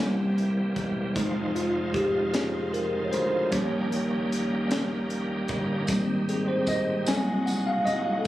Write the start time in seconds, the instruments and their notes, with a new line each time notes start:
Already playing: slap bass C2, tine electric piano G3 A#3 A#4, tonewheel organ A#3 G4
0.00 tonewheel organ E3 G3 C4, tine electric piano E4
0.38 closed hi-hat
0.76 slap bass E1, kick, closed hi-hat
1.15 slap bass F1, tine electric piano F3 G#3 D#4, tonewheel organ F3 G#3 D#4 F4, kick, closed hi-hat
1.55 tine electric piano F4, closed hi-hat
1.94 tine electric piano G4, kick, closed hi-hat
2.34 tine electric piano G#4, snare, closed hi-hat
2.73 tine electric piano A#4, closed hi-hat
3.04 tine electric piano C#5
3.12 slap bass D2, tine electric piano C5, closed hi-hat
3.51 slap bass D#2, tine electric piano F3 G3 C#4 C#5, tonewheel organ G3 A#3 C#4 G4, kick, closed hi-hat
3.92 closed hi-hat
4.32 closed hi-hat
4.71 snare, closed hi-hat
5.10 closed hi-hat
5.48 slap bass G1, kick, closed hi-hat
5.87 slap bass G#1, tonewheel organ D#3 G3 C4, tine electric piano G3 A#3, kick, closed hi-hat, tambourine
5.92 tine electric piano C4
6.29 tine electric piano G#4, closed hi-hat
6.48 tine electric piano C5
6.67 tine electric piano D#5, kick, closed hi-hat, tambourine
7.06 slap bass C2, tine electric piano F#3 A#3 C4 G#5, tonewheel organ F#3 G#3 F#4, snare, closed hi-hat, tambourine
7.46 tine electric piano F#5, closed hi-hat, tambourine
7.67 tine electric piano F5
7.85 slap bass C2, tine electric piano D#5, closed hi-hat
8.19 tine electric piano A4